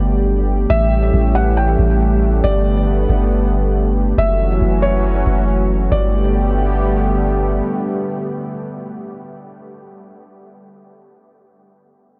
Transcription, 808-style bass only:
Already playing: G1
0.70 A1
1.14 A1
1.79 A1
2.44 G1
3.09 G1
4.18 F#1
4.62 F#1
5.27 F#1
5.92 G1

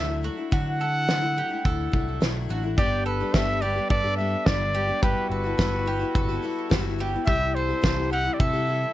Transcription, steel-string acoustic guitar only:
Already playing: D3 F#3 A3 D4 E4
0.23 F#3 A3 D4 E4
0.37 A3 D4 E4
0.51 D3 F#3 A3 D4 E4
0.80 F#3 A3 D4 E4
1.08 D3 F#3 A3 D4 E4
1.22 A3 D4 E4
1.37 F#3 A3 D4 E4
1.50 A3 D4 E4
1.92 F#3 A3 D4 E4
2.21 D3 F#3 A3 D4 E4
2.49 F#3 A3 D4 E4
2.63 A3 D4 E4
2.78 G2 D3 G3 B3 D4 G4
3.20 G3 B3 D4 G4
3.34 G2 D3 G3 B3 D4 G4
3.61 G3 B3 D4 G4
3.76 G3 B3 D4 G4
4.04 G3 B3 D4 G4
4.18 G3 B3 D4 G4
4.46 G2 D3 G3 B3 D4 G4
4.74 G3 B3 D4 G4
4.87 G3 B3 D4 G4
5.02 G3 B3 E4 F#4
5.44 B3 E4 F#4
5.58 G3 B3 E4 F#4
5.86 G3 B3 E4 F#4
5.99 B3 E4 F#4
6.29 B3 E4 F#4
6.43 G3 B3 E4 F#4
6.70 G3 B3 E4 F#4
6.99 G3 B3 E4 F#4
7.12 B3 E4 F#4
7.25 C3 E3 G3 E4 G4
7.69 G3 E4 G4
7.82 C3 E3 G3 E4 G4
8.10 E3 G3 E4 G4
8.24 G3 E4 G4
8.53 G3 E4 G4
8.67 E3 G3 E4 G4

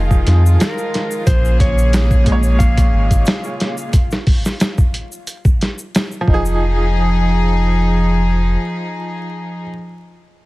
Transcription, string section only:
Already playing: D#3 G#3 F4
1.26 C#3 A#3 G#4
6.27 F3 D#4 G#4

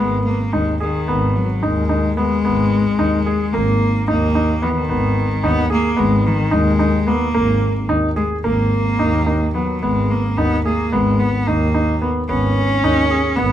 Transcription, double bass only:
0.00 G#1
0.54 D#2
1.08 G#1
1.63 D#2
2.44 G#1
2.99 D#2
3.54 G#1
4.08 D#2
4.90 G#1
5.44 D#2
5.97 G#1
6.51 D#2
7.34 G#1
7.89 D#2
8.43 G#1
8.99 D#2
9.83 G#1
10.38 D#2
10.93 G#1
11.47 D#2
12.29 G#1
12.84 D#2
13.38 G#1

